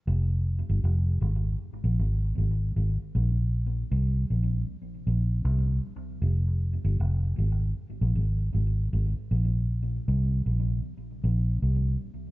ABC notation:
X:1
M:4/4
L:1/16
Q:"Swing 16ths" 1/4=78
K:Fm
V:1 name="Fingered electric bass" clef=bass
F,,,3 G,,, F,,,2 A,,,2 z B,,, A,,,2 A,,,2 A,,, z | B,,,4 C,,2 B,,,2 z2 B,,,2 C,,2 z2 | F,,,3 G,,, F,,,2 A,,,2 z B,,, A,,,2 A,,,2 A,,, z | B,,,4 C,,2 B,,,2 z2 B,,,2 C,,2 z2 |]